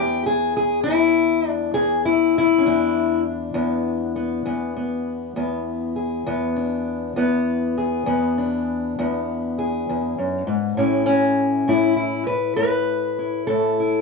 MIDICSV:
0, 0, Header, 1, 2, 480
1, 0, Start_track
1, 0, Tempo, 601805
1, 2838, Time_signature, 12, 3, 24, 8
1, 11178, End_track
2, 0, Start_track
2, 0, Title_t, "Steel-string acoustic guitar"
2, 0, Program_c, 0, 25
2, 0, Note_on_c, 0, 40, 71
2, 0, Note_on_c, 0, 59, 44
2, 0, Note_on_c, 0, 67, 99
2, 204, Note_off_c, 0, 67, 0
2, 207, Note_on_c, 0, 68, 95
2, 382, Note_off_c, 0, 59, 0
2, 442, Note_off_c, 0, 68, 0
2, 452, Note_on_c, 0, 68, 86
2, 663, Note_off_c, 0, 68, 0
2, 666, Note_on_c, 0, 64, 89
2, 688, Note_off_c, 0, 40, 0
2, 691, Note_on_c, 0, 40, 65
2, 1185, Note_off_c, 0, 64, 0
2, 1185, Note_on_c, 0, 62, 89
2, 1384, Note_off_c, 0, 62, 0
2, 1387, Note_on_c, 0, 68, 98
2, 1390, Note_off_c, 0, 40, 0
2, 1393, Note_on_c, 0, 40, 74
2, 1634, Note_off_c, 0, 68, 0
2, 1638, Note_on_c, 0, 64, 85
2, 1879, Note_off_c, 0, 64, 0
2, 1898, Note_on_c, 0, 64, 84
2, 2060, Note_on_c, 0, 61, 59
2, 2116, Note_off_c, 0, 61, 0
2, 2120, Note_on_c, 0, 62, 69
2, 2122, Note_off_c, 0, 40, 0
2, 2126, Note_on_c, 0, 40, 75
2, 2551, Note_off_c, 0, 64, 0
2, 2821, Note_off_c, 0, 40, 0
2, 2824, Note_on_c, 0, 40, 73
2, 2830, Note_on_c, 0, 59, 51
2, 3313, Note_off_c, 0, 59, 0
2, 3316, Note_on_c, 0, 59, 47
2, 3550, Note_off_c, 0, 40, 0
2, 3553, Note_on_c, 0, 40, 72
2, 3556, Note_off_c, 0, 59, 0
2, 3559, Note_on_c, 0, 59, 49
2, 3796, Note_off_c, 0, 59, 0
2, 3800, Note_on_c, 0, 59, 46
2, 4273, Note_off_c, 0, 40, 0
2, 4276, Note_on_c, 0, 40, 69
2, 4277, Note_off_c, 0, 59, 0
2, 4280, Note_on_c, 0, 59, 47
2, 4518, Note_off_c, 0, 62, 0
2, 4752, Note_on_c, 0, 68, 46
2, 4988, Note_off_c, 0, 40, 0
2, 4989, Note_off_c, 0, 59, 0
2, 4997, Note_on_c, 0, 40, 74
2, 5002, Note_on_c, 0, 59, 50
2, 5234, Note_on_c, 0, 62, 47
2, 5688, Note_off_c, 0, 62, 0
2, 5688, Note_off_c, 0, 68, 0
2, 5691, Note_off_c, 0, 59, 0
2, 5703, Note_off_c, 0, 40, 0
2, 5713, Note_on_c, 0, 40, 73
2, 5722, Note_on_c, 0, 59, 65
2, 6202, Note_on_c, 0, 68, 59
2, 6421, Note_off_c, 0, 40, 0
2, 6424, Note_off_c, 0, 59, 0
2, 6430, Note_on_c, 0, 40, 68
2, 6436, Note_on_c, 0, 59, 57
2, 6682, Note_on_c, 0, 62, 59
2, 7157, Note_off_c, 0, 40, 0
2, 7159, Note_off_c, 0, 59, 0
2, 7168, Note_on_c, 0, 40, 72
2, 7172, Note_on_c, 0, 59, 59
2, 7635, Note_off_c, 0, 68, 0
2, 7645, Note_on_c, 0, 68, 55
2, 7882, Note_off_c, 0, 40, 0
2, 7891, Note_on_c, 0, 40, 59
2, 8120, Note_off_c, 0, 40, 0
2, 8123, Note_on_c, 0, 42, 56
2, 8348, Note_off_c, 0, 42, 0
2, 8351, Note_on_c, 0, 44, 64
2, 8578, Note_off_c, 0, 62, 0
2, 8578, Note_off_c, 0, 68, 0
2, 8582, Note_off_c, 0, 59, 0
2, 8588, Note_off_c, 0, 44, 0
2, 8591, Note_on_c, 0, 45, 67
2, 8602, Note_on_c, 0, 61, 49
2, 8605, Note_on_c, 0, 64, 48
2, 8607, Note_on_c, 0, 67, 46
2, 8818, Note_off_c, 0, 61, 0
2, 8821, Note_on_c, 0, 61, 86
2, 9310, Note_off_c, 0, 45, 0
2, 9314, Note_on_c, 0, 45, 68
2, 9319, Note_off_c, 0, 67, 0
2, 9322, Note_off_c, 0, 64, 0
2, 9322, Note_on_c, 0, 64, 86
2, 9532, Note_off_c, 0, 64, 0
2, 9542, Note_on_c, 0, 64, 79
2, 9780, Note_off_c, 0, 64, 0
2, 9784, Note_on_c, 0, 71, 88
2, 9796, Note_off_c, 0, 61, 0
2, 10012, Note_off_c, 0, 71, 0
2, 10021, Note_on_c, 0, 71, 97
2, 10022, Note_off_c, 0, 45, 0
2, 10026, Note_on_c, 0, 45, 71
2, 10518, Note_on_c, 0, 64, 44
2, 10740, Note_off_c, 0, 71, 0
2, 10743, Note_on_c, 0, 69, 88
2, 10746, Note_off_c, 0, 45, 0
2, 10755, Note_on_c, 0, 45, 70
2, 11002, Note_off_c, 0, 64, 0
2, 11005, Note_on_c, 0, 64, 47
2, 11178, Note_off_c, 0, 45, 0
2, 11178, Note_off_c, 0, 64, 0
2, 11178, Note_off_c, 0, 69, 0
2, 11178, End_track
0, 0, End_of_file